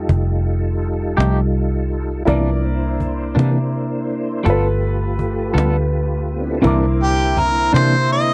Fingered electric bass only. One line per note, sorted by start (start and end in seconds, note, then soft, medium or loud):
0.09 1.14 F1 medium
1.18 2.23 C2 medium
2.28 3.32 C2 medium
3.36 4.41 C3 medium
4.46 5.51 G1 medium
5.55 6.60 D2 medium
6.65 7.69 C2 medium
7.74 8.34 C3 medium